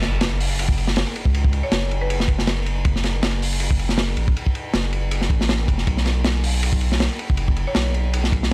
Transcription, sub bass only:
0.00 1.05 F#1 loud
1.25 1.62 C#2 loud
1.72 3.22 F#1 medium
3.23 4.16 F#1 medium
4.17 4.34 A1 medium
4.74 5.29 F#1 medium
5.30 5.67 A1 medium
5.68 5.85 F#1 loud
5.87 7.09 B1 loud
7.30 7.66 F#1 medium
7.76 8.53 B1 medium

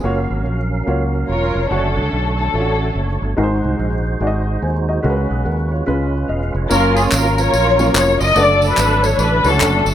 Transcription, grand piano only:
0.04 0.56 A#3 medium
0.04 0.56 F4 medium
0.04 0.56 F#4 medium
0.04 0.57 C#5 medium
0.86 1.39 A#3 medium
0.86 1.39 F4 medium
0.86 1.39 F#4 medium
0.86 1.40 C#5 medium
1.70 2.23 D3 medium
1.70 2.22 A3 medium
1.70 2.23 F#4 medium
1.70 2.23 C#5 medium
2.54 3.06 D3 medium
2.54 3.06 A3 medium
2.54 2.61 F4 soft
2.54 3.07 C#5 medium
2.60 3.09 F#4 medium
3.37 4.01 G#2 medium
3.37 3.89 G#3 medium
3.37 3.89 D#4 medium
3.37 3.89 F#4 medium
3.37 3.44 A#4 medium
3.43 3.92 C5 medium
4.21 4.73 G#3 medium
4.21 4.73 D#4 medium
4.21 4.63 F#4 medium
4.21 4.28 D5 medium
4.27 4.65 D#5 medium
4.63 4.88 C5 soft
4.63 4.87 G#5 medium
4.89 5.03 F#4 medium
4.89 5.28 D#5 medium
5.03 5.68 C#3 medium
5.03 5.56 G#3 medium
5.03 5.56 C#4 medium
5.03 5.46 F#4 medium
5.03 5.11 A#4 medium
5.10 5.48 B4 medium
5.45 5.70 A#4 soft
5.45 5.70 F#5 medium
5.71 5.86 F4 soft
5.71 6.11 C#5 medium
5.87 6.51 C#3 medium
5.87 6.39 G#3 medium
5.87 6.39 C#4 medium
5.87 6.39 F4 medium
5.87 6.39 B4 medium
6.29 6.67 D#5 medium
6.70 7.22 F#3 medium
6.70 7.22 A#3 medium
6.70 7.22 C#4 medium
6.70 7.22 F4 medium
6.70 7.22 C#5 medium
7.79 8.16 F#3 medium
7.79 8.15 A#3 medium
7.79 8.15 C#4 medium
7.79 8.15 F4 medium
7.79 8.16 C#5 medium
8.35 8.87 A3 medium
8.35 8.87 D4 medium
8.35 8.88 F#4 medium
8.35 8.42 B4 medium
8.41 8.90 D5 medium
9.44 9.81 D3 medium
9.44 9.80 A3 medium
9.44 9.49 E4 medium
9.44 9.81 C#5 medium
9.50 9.83 F#4 medium

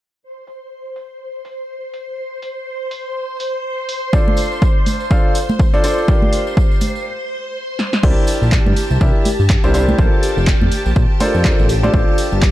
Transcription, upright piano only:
4.13 5.08 D4 medium
4.13 5.08 F4 medium
4.13 5.08 A4 medium
4.13 5.08 C5 medium
4.13 5.08 D5 medium
5.11 5.36 D4 medium
5.11 5.36 F4 medium
5.11 5.36 A4 medium
5.11 5.36 C5 medium
5.11 5.36 F5 medium
5.74 5.82 D4 medium
5.74 5.82 F4 medium
5.74 5.82 A4 medium
5.74 5.82 C5 medium
5.74 5.82 D5 loud
5.84 6.06 D4 medium
5.84 6.06 F4 medium
5.84 6.06 A4 medium
5.84 6.06 C5 medium
5.84 6.06 D5 loud
6.08 7.06 D4 medium
6.08 7.06 F4 medium
6.08 7.06 G4 medium
6.08 7.06 A#4 medium
6.08 7.06 D5 medium
8.03 8.99 D4 medium
8.03 8.99 E4 medium
8.03 8.99 G4 medium
8.03 8.99 A#4 medium
8.03 8.99 C5 medium
9.01 9.27 D4 medium
9.01 9.27 E4 medium
9.01 9.27 G4 medium
9.01 9.27 A#4 medium
9.01 9.27 E5 medium
9.64 9.73 D4 medium
9.64 9.73 E4 medium
9.64 9.73 G4 medium
9.64 9.73 A#4 medium
9.64 9.73 C5 loud
9.74 9.96 D4 medium
9.74 9.96 E4 medium
9.74 9.96 G4 medium
9.74 9.96 A#4 medium
9.74 9.96 C5 loud
9.99 11.18 D4 medium
9.99 11.18 F4 medium
9.99 11.18 A4 medium
9.99 11.18 A#4 medium
9.99 11.18 C5 medium
11.20 11.42 D4 medium
11.20 11.42 F4 medium
11.20 11.42 A4 medium
11.20 11.42 A#4 medium
11.20 11.42 C5 loud
11.45 11.62 D4 medium
11.45 11.62 F4 medium
11.45 11.62 A4 medium
11.45 11.62 A#4 medium
11.45 11.62 C5 loud
11.83 11.92 D4 medium
11.83 11.92 F4 medium
11.83 11.92 A4 medium
11.83 11.92 C5 medium
11.83 11.92 D5 loud
11.94 12.51 D4 medium
11.94 12.51 F4 medium
11.94 12.51 A4 medium
11.94 12.51 C5 medium
11.94 12.51 D5 medium

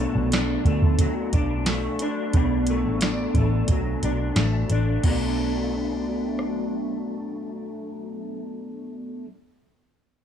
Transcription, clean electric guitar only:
0.00 2.35 B2 medium
0.00 1.00 F#3 medium
0.00 0.66 A3 medium
0.00 0.33 D4 medium
0.33 1.34 D4 medium
0.67 1.68 A3 medium
1.01 3.71 F#3 medium
1.34 2.02 D4 medium
1.68 2.70 A3 medium
2.02 2.36 D4 medium
2.36 5.02 B2 medium
2.36 3.02 D4 medium
2.70 3.37 A3 medium
3.02 4.04 D4 medium
3.37 4.38 A3 soft
3.71 5.05 F#3 medium
4.04 4.71 D4 medium
4.38 5.07 A3 medium
4.72 5.10 D4 medium
5.03 9.23 B2 medium
5.03 9.24 F#3 medium
5.08 9.25 A3 medium
5.08 9.26 D4 medium

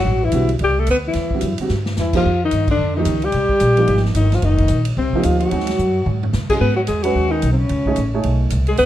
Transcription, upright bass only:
0.05 0.32 A1 medium
0.32 0.59 B1 medium
0.61 0.87 C2 medium
0.87 1.14 D2 medium
1.15 1.41 E2 medium
1.42 1.58 F#2 medium
1.59 muted upright bass stroke soft
1.70 1.96 G2 medium
1.97 2.23 E2 medium
2.25 2.51 F2 medium
2.52 2.78 G2 medium
2.79 3.05 F2 medium
3.06 3.32 C#2 medium
3.34 3.49 C2 medium
3.49 muted upright bass stroke soft
3.61 3.87 A#1 medium
3.88 4.14 G#1 medium
4.15 4.41 G1 medium
4.42 4.69 F1 medium
4.70 4.96 A#1 medium
4.97 5.12 C2 medium
5.13 muted upright bass stroke soft
5.24 5.51 D2 medium
5.52 5.78 D#2 medium
5.79 6.05 F#2 medium
6.06 6.33 G#2 medium
6.34 6.60 C3 medium
6.61 6.87 G#2 medium
6.89 7.15 E2 medium
7.15 7.42 D#2 medium
7.43 7.69 B1 medium
7.69 7.96 C#2 medium
7.97 8.24 A1 medium
8.25 8.51 B1 medium
8.52 8.78 C2 medium
8.79 8.86 C#2 medium

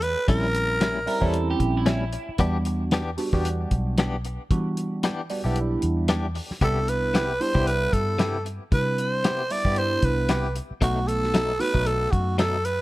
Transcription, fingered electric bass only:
0.00 0.15 E2 loud
0.29 1.06 A#1 medium
1.22 1.54 E2 medium
1.60 2.16 A#1 loud
2.29 muted fingered electric bass stroke soft
2.39 3.17 E2 medium
3.33 3.65 E2 medium
3.72 4.37 B1 loud
4.51 5.28 E3 medium
5.45 5.76 B1 loud
5.83 6.39 E2 medium
6.51 muted fingered electric bass stroke soft
6.61 7.39 C2 medium
7.55 7.87 C2 medium
7.93 8.58 G2 loud
8.72 9.49 C3 medium
9.65 9.97 G2 medium
10.03 10.59 C2 loud
10.71 muted fingered electric bass stroke soft
10.82 11.59 B1 medium
11.75 12.06 B1 medium
12.13 12.78 F#2 loud

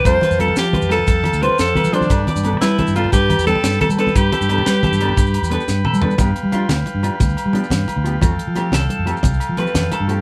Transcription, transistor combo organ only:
0.00 2.07 G5 medium
0.06 2.09 F5 medium
0.06 4.12 A5 medium
2.11 6.15 B4 medium
2.11 6.15 G5 medium
4.16 6.17 B5 medium
6.18 8.20 B4 medium
6.18 10.21 F5 medium
6.18 8.20 G5 medium
8.21 10.21 A4 medium
8.21 10.21 G5 medium

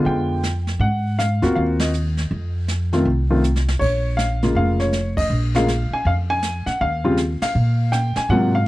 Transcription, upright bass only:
0.05 0.77 F2 medium
0.79 1.38 G#2 medium
1.42 1.55 D#2 medium
1.56 2.27 D#2 medium
2.31 3.02 F2 medium
3.05 3.77 C2 medium
3.81 4.52 A#1 medium
4.55 5.26 F1 medium
5.30 5.87 A#1 medium
5.91 muted upright bass stroke soft
6.05 6.62 F2 medium
6.66 muted upright bass stroke soft
6.81 7.38 D#2 medium
7.41 muted upright bass stroke soft
7.55 8.12 A#2 medium
8.17 muted upright bass stroke soft
8.29 8.68 G#2 medium

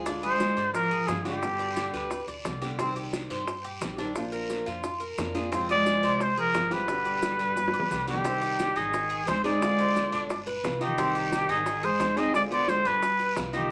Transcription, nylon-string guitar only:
0.05 0.73 D3 medium
0.05 0.73 G#3 medium
0.05 0.74 D4 medium
0.05 0.74 F4 medium
0.74 muted nylon-string guitar stroke medium
1.08 1.25 D3 soft
1.08 1.25 G#3 medium
1.08 1.25 D4 soft
1.08 1.24 F4 medium
1.25 1.43 G#3 medium
1.25 1.42 D4 medium
1.25 1.42 F4 medium
1.42 2.10 B2 medium
1.42 2.10 D3 medium
1.42 2.11 G3 medium
1.42 2.10 B3 medium
1.42 2.12 G4 medium
2.11 muted nylon-string guitar stroke medium
2.45 2.61 D3 medium
2.45 2.62 G3 medium
2.45 2.61 B3 soft
2.45 2.61 G4 medium
2.62 2.80 D3 medium
2.62 2.79 G3 medium
2.62 2.79 B3 medium
2.62 2.78 G4 medium
2.79 3.46 C3 medium
2.79 3.46 D#3 medium
2.79 3.46 G3 medium
2.79 3.47 C4 medium
2.79 3.47 G4 medium
3.47 muted nylon-string guitar stroke medium
3.81 3.98 D#3 soft
3.81 3.98 G3 medium
3.81 3.98 C4 medium
3.81 3.97 G4 medium
3.98 4.15 D#3 medium
3.98 4.16 G3 medium
3.98 4.15 C4 medium
3.98 4.15 G4 medium
4.15 4.84 F3 medium
4.15 4.83 A#3 medium
4.15 4.84 D4 medium
4.15 4.85 F4 medium
4.84 muted nylon-string guitar stroke medium
5.18 5.34 F3 medium
5.18 5.35 A#3 soft
5.18 5.35 D4 medium
5.18 5.34 F4 medium
5.35 5.52 A#3 medium
5.35 5.52 D4 medium
5.35 5.51 F4 medium
5.51 6.19 C3 medium
5.51 6.19 F3 medium
5.51 6.19 G#3 medium
5.51 6.20 C4 medium
5.51 6.20 F4 medium
6.20 muted nylon-string guitar stroke medium
6.53 6.70 F3 soft
6.53 6.71 G#3 medium
6.53 6.70 C4 medium
6.53 6.69 F4 medium
6.70 6.88 F3 soft
6.70 6.88 G#3 medium
6.70 6.88 C4 medium
6.70 6.87 F4 medium
6.87 7.55 B2 medium
6.87 7.55 D3 medium
6.87 7.56 G3 medium
6.87 7.56 B3 medium
6.87 7.56 G4 medium
7.56 muted nylon-string guitar stroke medium
7.90 8.07 D3 medium
7.90 8.07 G3 medium
7.90 8.07 B3 medium
7.90 8.07 G4 medium
8.08 8.25 D3 medium
8.08 8.25 G3 medium
8.08 8.25 B3 medium
8.08 8.24 G4 medium
8.24 8.92 C3 medium
8.24 8.92 D#3 medium
8.24 8.93 G3 medium
8.24 8.92 C4 medium
8.24 8.94 G4 medium
8.93 muted nylon-string guitar stroke medium
9.27 9.44 G#3 medium
9.27 9.44 C4 medium
9.27 9.44 D#4 medium
9.27 9.43 G#4 medium
9.44 9.60 G#3 medium
9.44 9.61 C4 medium
9.44 9.61 D#4 medium
9.44 9.61 G#4 medium
9.60 10.28 D3 medium
9.60 10.29 G#3 medium
9.60 10.30 C4 medium
9.60 10.30 F4 medium
10.30 muted nylon-string guitar stroke medium
10.64 10.80 G3 medium
10.64 10.81 B3 medium
10.64 10.79 F4 medium
10.81 10.98 B3 medium
10.81 10.97 F4 medium
10.96 11.65 C3 medium
10.96 11.64 D#3 medium
10.96 11.65 G3 medium
10.96 11.65 C4 medium
10.96 11.66 G4 medium
11.65 muted nylon-string guitar stroke medium
11.99 12.16 G#3 medium
11.99 12.16 C4 medium
11.99 12.16 D#4 medium
11.99 12.15 G#4 medium
12.16 12.33 G#3 medium
12.16 12.34 C4 medium
12.16 12.34 D#4 medium
12.16 12.33 G#4 medium
12.33 13.01 D3 medium
12.33 13.02 G#3 medium
12.33 13.02 C4 medium
12.33 13.02 F4 medium
13.02 muted nylon-string guitar stroke medium
13.36 13.52 G3 medium
13.36 13.53 B3 medium
13.36 13.52 F4 medium
13.53 13.71 B3 medium
13.53 13.70 F4 medium

